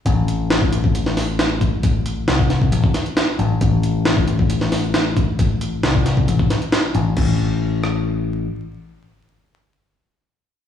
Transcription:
<<
  \new Staff \with { instrumentName = "Picked electric bass" } { \clef bass \time 4/4 \key a \minor \tempo 4 = 135 a,,1~ | a,,4 c,4 a,,8 r4 a,,8 | a,,1~ | a,,4 c,4 a,,8 r4 a,,8 |
a,,2. r4 | r1 | }
  \new DrumStaff \with { instrumentName = "Drums" } \drummode { \time 4/4 <hh bd>8 hh8 <hh sn>16 bd16 hh16 bd16 hh16 sn16 <hho sn>8 <hh sn>8 <hh bd>8 | <hh bd>8 hh8 <hh sn>16 bd16 <hh sn>16 bd16 hh16 bd16 <hh sn>16 hh16 <hh sn>8 hh8 | <hh bd>8 hh8 <hh sn>16 bd16 hh16 bd16 hh16 sn16 <hho sn>8 <hh sn>8 <hh bd>8 | <hh bd>8 hh8 <hh sn>16 bd16 <hh sn>16 bd16 hh16 bd16 <hh sn>16 hh16 <hh sn>8 hh8 |
<cymc bd>4 r8 ss8 r4 r4 | r4 r4 r4 r4 | }
>>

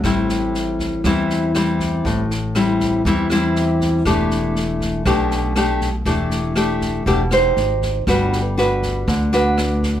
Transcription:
<<
  \new Staff \with { instrumentName = "Nylon-string guitar" } { \time 4/4 \key a \dorian \tempo 4 = 120 << { <g c' e'>2 <g c' e'>4 <g c' e'>4~ | <g c' e'>8 r8 <g c' e'>4 <g c' e'>8 <g c' e'>4. | <a d' g'>2 <a d' g'>4 <a d' g'>8 r8 | <a d' g'>4 <a d' g'>4 <a d' g'>8 <ees' g' c''>4. |
<d' fis' b'>8 r8 <d' fis' b'>4. <d' fis' b'>4. | } \\ { a,2 e2 | a,2 e2 | e2 b,2 | e2 b,4 r4 |
g2 d2 | } >> }
  \new Staff \with { instrumentName = "Upright bass" } { \clef bass \time 4/4 \key a \dorian a,,2 e,2 | a,,2 e,2 | e,,2 b,,2 | e,,2 e,,4 aes,,4 |
g,,2 d,2 | }
  \new DrumStaff \with { instrumentName = "Drums" } \drummode { \time 4/4 <bd ss sn>8 sn8 sn8 <bd sn>8 <bd ss sn>8 sn8 <ss sn>8 <bd sn>8 | <bd sn>8 sn8 <ss sn>8 <bd sn>8 <bd sn>8 <ss sn>8 sn8 <bd sn>8 | <bd ss sn>8 sn8 sn8 <bd sn>8 <bd ss sn>8 sn8 <ss sn>8 <bd sn>8 | <bd sn>8 sn8 <ss sn>8 <bd sn>8 <bd sn>8 <ss sn>8 sn8 <bd sn>8 |
<bd ss sn>8 sn8 sn8 <bd sn>8 <bd ss sn>8 sn8 <ss sn>8 <bd sn>8 | }
>>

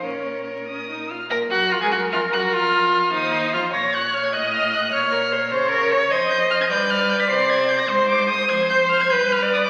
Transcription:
<<
  \new Staff \with { instrumentName = "Violin" } { \time 6/8 \key bes \minor \tempo 4. = 99 des''4. ees'''4 f'''8 | bes'''8 ges'''8 f'''16 aes'''16 ges'''8 f'''8 ges'''8 | f'''4. ees'''4 f'''8 | bes'''8 ges'''8 f'''16 aes'''16 ges'''8 f'''8 ges'''8 |
f'''4. r4. | \key f \dorian aes'''8 g'''8 f'''16 aes'''16 g'''8 f'''8 g'''16 b'''16 | c''''8 aes'''8 g'''16 bes'''16 c'''8 d'''8 ees'''8 | aes'''8 g'''8 f'''16 aes'''16 g'''8 f'''8 ees'''16 d'''16 | }
  \new Staff \with { instrumentName = "Viola" } { \time 6/8 \key bes \minor des'4. des'8 ees'8 f'8 | bes'2.~ | bes'4. c''4. | des''4. ees''4. |
des''8 bes'8 c''8 des''4. | \key f \dorian ees''4. d''4.~ | d''4. c''4. | c''4. b'4. | }
  \new Staff \with { instrumentName = "Violin" } { \time 6/8 \key bes \minor bes'2~ bes'8 r8 | bes'8 ges'8 f'16 aes'16 ges'8 f'8 ges'8 | f'4. ees'4 f'8 | des''4. ees''4. |
des''4. c''8 bes'8 des''8 | \key f \dorian c''4. b'4. | c''4. c''4. | c''4. b'8. d''8. | }
  \new Staff \with { instrumentName = "Cello" } { \clef bass \time 6/8 \key bes \minor bes,2~ bes,8 r8 | bes,8 ges,8 f,16 aes,16 ges,8 f,8 ges,8 | f,4. ees,4 f,8 | bes,4. a,4. |
bes,4. des4. | \key f \dorian f,4. g,4. | c4. aes,4. | f,4. g,4. | }
>>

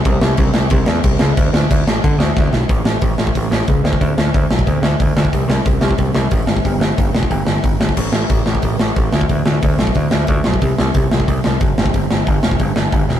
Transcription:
<<
  \new Staff \with { instrumentName = "Picked electric bass" } { \clef bass \time 4/4 \key b \minor \tempo 4 = 182 c,8 c,8 c,8 c,8 c,8 e,8 c,8 cis,8 | d,8 d,8 d,8 a,,8 d8 d,8 d,8 b,,8 | a,,8 a,,8 a,,8 a,,8 a,,8 a,,8 cis,8 d,8 | d,8 d,8 d,8 b,,8 d,8 d,8 d,8 d,8 |
c,8 c,8 c,8 c,8 c,8 c,8 a,,8 g,,8 | g,,8 g,,8 g,,8 e,,8 g,,8 g,,8 g,,8 g,,8 | a,,8 a,,8 a,,8 a,,8 a,,8 a,,8 a,,8 d,8 | d,8 d,8 d,8 b,,8 d,8 d,8 d,8 b,,8 |
c,8 c,8 c,8 c,8 c,8 c,8 fis,,8 g,,8 | g,,8 g,,8 g,,8 e,,8 g,,8 g,,8 g,,8 e,,8 | }
  \new DrumStaff \with { instrumentName = "Drums" } \drummode { \time 4/4 <cymc bd>8 sn8 <cymc bd>8 sn8 <cymc bd>8 sn8 <cymc bd>8 sn8 | <cymc bd>8 sn8 <cymc bd>8 sn8 <cymc bd>8 sn8 <bd sn>8 sn8 | <hho bd>8 sn8 <hho bd>8 sn16 bd16 <hho bd>8 sn8 <hho bd>8 sn16 bd16 | <hho bd>8 sn8 <hho bd>8 sn16 bd16 <hho bd>8 sn8 <hho bd>8 sn16 bd16 |
<hho bd>8 sn8 <hho bd>8 sn16 bd16 <hho bd>8 sn8 <hho bd>8 sn16 bd16 | <hho bd>8 sn8 <hho bd>8 sn16 bd16 <hho bd>8 sn8 <hho bd>8 sn16 bd16 | <cymc bd>8 sn8 <hho bd>8 sn16 bd16 <hho bd>8 sn8 <hho bd>8 sn16 bd16 | <hho bd>8 sn8 <hho bd>8 sn16 bd16 <hho bd>8 sn8 <hho bd>8 sn16 bd16 |
<hho bd>8 sn8 <hho bd>8 sn16 bd16 <hho bd>8 sn8 <hho bd>8 sn16 bd16 | <hho bd>8 sn8 <hho bd>8 sn16 bd16 <hho bd>8 sn8 <hho bd>8 sn8 | }
>>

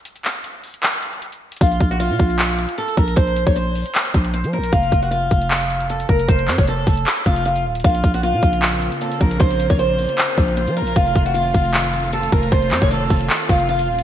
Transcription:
<<
  \new Staff \with { instrumentName = "Steel-string acoustic guitar" } { \time 4/4 \key bes \minor \tempo 4 = 154 r1 | f'8. ges'16 f'2 a'8 bes'8 | c''8. des''16 c''2 c''8 bes'8 | f'8. ges'16 f'2 a'8 bes'8 |
c''8. des''16 a'4. f'8 f'8 r8 | f'8. ges'16 f'2 a'8 bes'8 | c''8. des''16 c''2 c''8 bes'8 | f'8. ges'16 f'2 a'8 bes'8 |
c''8. des''16 a'4. f'8 f'8 r8 | }
  \new Staff \with { instrumentName = "String section" } { \time 4/4 \key bes \minor << { r1 | r1 | r1 | r1 |
r1 | f'1~ | f'1~ | f'1~ |
f'1 | } \\ { r1 | r1 | r1 | r1 |
r1 | <des bes c'>1~ | <des bes c'>1 | <ees a c'>1~ |
<ees a c'>1 | } >> }
  \new Staff \with { instrumentName = "808-style bass" } { \clef bass \time 4/4 \key bes \minor r1 | bes,,8 bes,,8. bes,16 bes,,4~ bes,,16 r8. bes,,8 | bes,,8. bes,,4 r8. bes,,8. f16. bes,,16. | f,,8 f,,4 f,,2 f,,8 |
f,,8 f,16 f,,8. f,,8 r8 f,,4 ees,,8 | bes,,8 bes,,8. bes,16 bes,,4~ bes,,16 r8. bes,,8 | bes,,8. bes,,4 r8. bes,,8. f16. bes,,16. | f,,8 f,,4 f,,2 f,,8 |
f,,8 f,16 f,,8. f,,8 r8 f,,4 ees,,8 | }
  \new DrumStaff \with { instrumentName = "Drums" } \drummode { \time 4/4 hh16 hh16 <hc hh>16 hh16 hh8 hho16 hh16 <hc hh>16 hh16 hh16 hh16 hh16 hh8 hh32 hh32 | <hh bd>32 hh32 hh16 <hh bd>16 hh16 hh8 <hh bd>16 hh16 <hc hh>16 hh16 hh16 hh16 hh16 hh16 bd16 hh16 | <hh bd>16 hh16 hh16 <hh bd>16 hh8 hho16 hh16 <hc hh>16 hh16 <hh bd>16 hh16 hh16 hh8 hh16 | <hh bd>16 hh16 <hh bd>16 hh16 hh8 <hh bd>16 hh16 <hc hh>16 hh16 hh16 hh16 hh16 hh16 bd16 hh16 |
<hh bd>16 hh16 <hc hh>16 <hh bd>16 hh8 <hho bd>16 hh16 <hc hh>16 hh16 <hh bd>16 hh16 hh16 hh8 hh32 hh32 | <hh bd>32 hh32 hh16 <hh bd>16 hh16 hh8 <hh bd>16 hh16 <hc hh>16 hh16 hh16 hh16 hh16 hh16 bd16 hh16 | <hh bd>16 hh16 hh16 <hh bd>16 hh8 hho16 hh16 <hc hh>16 hh16 <hh bd>16 hh16 hh16 hh8 hh16 | <hh bd>16 hh16 <hh bd>16 hh16 hh8 <hh bd>16 hh16 <hc hh>16 hh16 hh16 hh16 hh16 hh16 bd16 hh16 |
<hh bd>16 hh16 <hc hh>16 <hh bd>16 hh8 <hho bd>16 hh16 <hc hh>16 hh16 <hh bd>16 hh16 hh16 hh8 hh16 | }
>>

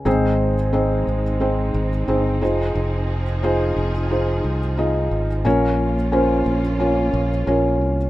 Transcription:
<<
  \new Staff \with { instrumentName = "Felt piano" } { \time 4/4 \key aes \major \tempo 4 = 89 <c' ees' aes' c''>8 r8 <c' ees' aes' c''>8 r8 <c' ees' aes' c''>8 r8 <c' ees' aes' c''>8 <ees' f' aes' c''>8~ | <ees' f' aes' c''>8 r8 <ees' f' aes' c''>8 r8 <ees' f' aes' c''>8 r8 <ees' f' aes' ees''>8 r8 | <des' f' bes' des''>8 r8 <des' f' bes' c''>8 r8 <des' f' bes' des''>8 r8 <des' f' bes' des''>8 r8 | }
  \new Staff \with { instrumentName = "Felt piano" } { \clef bass \time 4/4 \key aes \major aes,4. r2 r8 | r1 | bes,4. r2 r8 | }
  \new Staff \with { instrumentName = "String section" } { \time 4/4 \key aes \major << { <aes ees'>2.~ <aes ees'>8 <f aes'>8~ | <f aes'>1 | <bes f'>1 | } \\ { c'1~ | c'1 | des'1 | } >> }
  \new Staff \with { instrumentName = "Fingered electric bass" } { \clef bass \time 4/4 \key aes \major aes,,4. aes,,4 aes,,8 g,,8 f,,8 | f,,4. f,,4 c,4 aes,,8 | bes,,4. bes,,4 bes,,8 bes,,8 c,8 | }
>>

